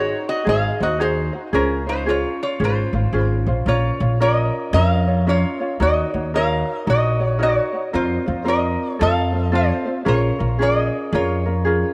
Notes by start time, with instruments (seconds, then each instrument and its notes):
Already playing: ukulele D#4 F#4 G#4 C#5, resonator guitar played with a steel bar F#4 C#5
0.29 resonator guitar played with a steel bar F#4 D#5
0.45 upright bass G#1, ukulele D#4 F#4 G#4 C5
0.49 resonator guitar played with a steel bar G#4 F5
0.80 upright bass D#2, ukulele D#4 F#4 C5, resonator guitar played with a steel bar F#4 D#5
1.00 ukulele D#4 F#4 G#4 C5, resonator guitar played with a steel bar D#4 C5
1.33 ukulele D#4 F#4 C5
1.53 upright bass C#2, ukulele C#4 F4 G#4 C5, resonator guitar played with a steel bar C#4 A#4
1.87 ukulele C#4 F4 C5, resonator guitar played with a steel bar D#4 C5
2.06 ukulele C#4 F4 G#4 C5, resonator guitar played with a steel bar F4 C#5
2.43 resonator guitar played with a steel bar F4 C#5
2.60 upright bass G#1, ukulele C#4 F4 G#4 C5
2.64 resonator guitar played with a steel bar F4 C5
2.93 upright bass G#1, ukulele C#4 F4 C5
3.13 upright bass G#1, ukulele C#4 F4 G#4 C5
3.24 resonator guitar played with a steel bar A#4
3.46 upright bass A#1, ukulele C#4 F4 C5
3.66 upright bass A#1, ukulele C#4 F4 A#4 C#5, resonator guitar played with a steel bar F4 C#5
4.00 upright bass A#1, ukulele C#4 F4 C#5
4.20 ukulele C#4 F4 A#4 C#5, resonator guitar played with a steel bar A#4 D#5
4.73 upright bass F2, ukulele C#4 F4 A#4 C#5, resonator guitar played with a steel bar A#4 F5
5.07 ukulele C#4 F4 C#5
5.27 ukulele C#4 F4 A#4 C#5, resonator guitar played with a steel bar F4 C#5
5.60 ukulele C#4 F4 C#5
5.80 upright bass D#2, ukulele D#4 F#4 A#4 C#5, resonator guitar played with a steel bar F#4 D#5
6.14 upright bass D#2, ukulele D#4 F#4 C#5
6.34 ukulele D#4 F#4 A#4 C#5, resonator guitar played with a steel bar A#4 F5
6.79 resonator guitar played with a steel bar D#5
6.86 upright bass A#1, ukulele D#4 F#4 A#4 C#5, resonator guitar played with a steel bar F#4 D#5
7.20 ukulele D#4 F#4 C#5
7.39 ukulele D#4 F#4 A#4 C#5, resonator guitar played with a steel bar F#4
7.43 resonator guitar played with a steel bar C#5
7.73 ukulele D#4 F#4 C#5
7.93 upright bass F2, ukulele C4 F4 A#4 C5, resonator guitar played with a steel bar F4 C5
8.26 upright bass F2, ukulele C4 F4 C5
8.45 ukulele C4 F4 A#4 C5, resonator guitar played with a steel bar D#5
8.49 resonator guitar played with a steel bar A#4
8.91 resonator guitar played with a steel bar C#5
8.99 upright bass F2, ukulele C4 F4 A4 C5, resonator guitar played with a steel bar A4 F5
9.33 ukulele C4 F4 C5
9.46 resonator guitar played with a steel bar D#5
9.52 ukulele C4 F4 A4 C5, resonator guitar played with a steel bar F4 C5
9.85 ukulele C4 F4 C5
10.05 upright bass A#1, ukulele C#4 F4 G#4 A#4, resonator guitar played with a steel bar F4 C#5
10.39 upright bass A#1, ukulele C#4 F4 A#4
10.59 ukulele C#4 F4 G#4 A#4, resonator guitar played with a steel bar G#4
10.63 resonator guitar played with a steel bar D#5
11.12 upright bass F2, ukulele C#4 F4 G#4 A#4, resonator guitar played with a steel bar F4 C#5
11.46 ukulele C#4 F4 A#4
11.65 ukulele C#4 F4 G#4 A#4